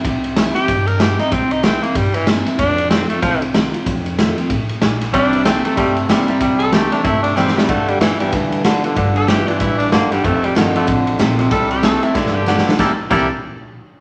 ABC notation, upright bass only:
X:1
M:4/4
L:1/8
Q:"Swing" 1/4=188
K:Cmix
V:1 name="Upright bass" clef=bass
C,,4 G,,4 | C,,4 G,,4 | F,,4 C,,4 | F,,4 A,,,2 B,,,2 |
C,,4 G,,,4 | C,,4 G,,,4 | G,,,4 D,,4 | G,,,4 A,,,2 G,,,2 |
F,,,2 G,,,2 A,,,2 B,,,2 | C,,4 G,,,4 | C,, z C,, z4 z |]